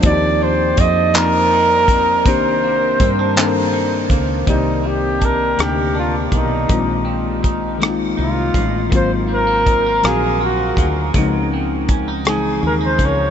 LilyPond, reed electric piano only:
\new Staff \with { instrumentName = "Reed electric piano" } { \time 6/8 \key c \minor \tempo 4. = 54 <f bes c' ees' fis' g'>4 r8 <f bes c' ees' bes'>4 r8 | <ees bes c' d' g'>4 r8 <ees bes c' d' a' bes'>4 r8 | \key bes \dorian <ees bes c' g' d''>4 r8 <c d bes c' d' g'>4 r8 | <ees aes bes c' f'>4 r8 <ees aes bes c' ees' f'>4 r8 |
<ees ges bes c' f'>4 r8 <ees ges bes c' f''>4 r8 | <des f aes c' ees'>4 r8 <des e f aes c' ees'>4 r8 | }